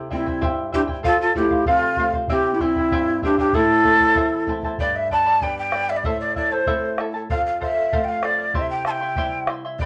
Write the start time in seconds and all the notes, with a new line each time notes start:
Already playing: C3 G4 C5 G5
0.10 G3 C4 E4 F4 C5 E5 G5, bombo low
0.17 E4
0.26 E4 C5 G5, bombo low
0.41 G2 E4 G4 C5 E5 G5, bombo low
0.73 G3 C4 D4 E4 G4 C5 E5 G5, bombo low
0.87 E4 C5 G5, bombo low
1.03 F2 F4 A4 C5 F5, bombo low
1.21 F4 A4
1.35 F3 A3 C4 E4 G4 A4 C5 F5, bombo low
1.50 C5 F5, bombo low
1.65 C3 C4 F4 A4 C5 F5, bombo low
1.96 F3 A3 C4 A4 C5 F5, bombo low
2.13 C5 F5, bombo low
2.28 C3 C4 E4 G4 C5 E5 G5, bombo low
2.54 E4 G4
2.60 G3 C4 E4 C5 E5 G5, bombo low
2.76 E4 C5 G5, bombo low
2.91 G2 E4 G4 C5 E5 G5, bombo low
3.22 G3 C4 D4 E4 G4 C5 E5 G5, bombo low
3.38 D4 E4 G4 C5 G5, bombo low
3.53 A2 E4 A4 C5 E5 A5, bombo low
3.84 A3 C4 E4 C5 E5 A5, bombo low
4.00 E4 C5 A5, bombo low
4.15 E2 E4 A4 C5 E5 A5, bombo low
4.47 A3 C4 E4 C5 E5 A5, bombo low
4.62 E4 C5 A5, bombo low
4.78 G2 G4 B4 D5 G5 B5, bombo low
4.96 E5
5.10 B4 D5 G5 A5 B5, bombo low
5.26 B4 D5 B5
5.41 G3 B3 D4 G4 B4 D5 G5 B5, bombo low
5.58 G5
5.72 B4 D5 G5 B5, bombo rim
5.89 B4 D5 E5 B5
5.97 D5
6.04 A2 E4 A4 C5 E5 A5, bombo low
6.20 D5
6.35 E4 A4 D5 E5 A5, bombo low
6.52 E4 A4 C5 A5
6.66 A3 C4 E4 A4 C5 E5 A5, bombo low
6.98 E4 A4 E5 A5, bombo rim
7.14 E4 A4 A5
7.30 F2 A4 C5 F5, bombo low
7.46 F5
7.61 A4 C5 E5 F5, bombo low
7.76 C5 F5
7.92 A3 C4 F4 A4 C5 F5, bombo low
8.04 G5
8.08 F5
8.23 A4 C5 D5 F5, bombo rim
8.38 C5 F5
8.54 C3 E4 G4 C5 E5 C6, bombo low
8.70 G5
8.85 E4 C5 E5 A5 C6, bombo rim
8.91 G5
9.01 E4 E5 C6
9.16 G3 C4 E4 G4 C5 E5 C6, bombo low
9.47 E4 C5 E5 C6, bombo rim
9.65 E4 E5 C6
9.79 G2 G4 B4 D5 G5 B5, bombo low